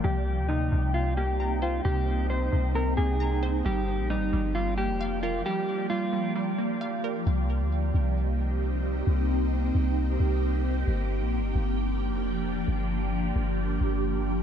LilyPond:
<<
  \new Staff \with { instrumentName = "Clean electric guitar" } { \time 4/4 \key c \minor \tempo 4 = 133 g'4 ees'4 f'8 g'4 f'8 | g'4 c''4 bes'8 aes'4. | g'4 ees'4 f'8 g'4 f'8 | g'4 f'4 r2 |
r1 | r1 | r1 | r1 | }
  \new Staff \with { instrumentName = "Ambient pad" } { \time 4/4 \key c \minor << { <bes g''>1~ | <bes g''>1 | <bes g'>1~ | <bes g'>1 |
<bes g'>1~ | <bes g'>1~ | <bes g'>1~ | <bes g'>1 | } \\ { <c' ees'>1~ | <c' ees'>1 | <f d''>1~ | <f d''>1 |
<c' ees'>1~ | <c' ees'>1 | <f d'>1~ | <f d'>1 | } >> }
  \new Staff \with { instrumentName = "Synth pluck" } { \clef bass \time 4/4 \key c \minor c4 c8 c8 c8 bes8 bes''8 c''8 | c4 c8 c8 c8 bes8 bes''8 c''8 | g4 g8 g8 g8 bes8 f''8 bes'8 | g4 g8 g8 g8 bes8 f''8 bes'8 |
r1 | r1 | r1 | r1 | }
  \new Staff \with { instrumentName = "808-style bass" } { \clef bass \time 4/4 \key c \minor c,8. d,8. c,2~ c,8 | c,4. c,4 c,4. | g,,8. bes,,16. g,,16. g,,4~ g,,16 f,,4~ f,,16 | r1 |
c,8. d,8. c,2~ c,8 | c,4. c,4 c,4. | g,,8. bes,,16. g,,16. g,,4~ g,,16 f,,4~ f,,16 | g,,4. g,,4 g,,4. | }
>>